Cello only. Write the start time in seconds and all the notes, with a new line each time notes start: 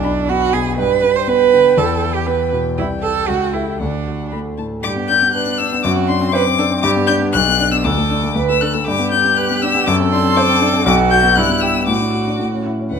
Already playing: D4
0.29 F#4
0.53 G#4
0.78 B4
1.16 C5
1.28 B4
1.78 A4
2.15 G4
2.27 B4
2.78 E4
3.03 A4
3.28 F#4
3.53 E4
3.80 D4
4.83 G4
5.35 D4
5.84 F#4
6.33 B4
6.58 A4
6.83 G4
7.34 D4
7.85 A4
8.36 B4
8.62 A4
8.87 G4
9.88 A4
10.86 F#4
11.37 E4
11.89 F#4
12.91 B4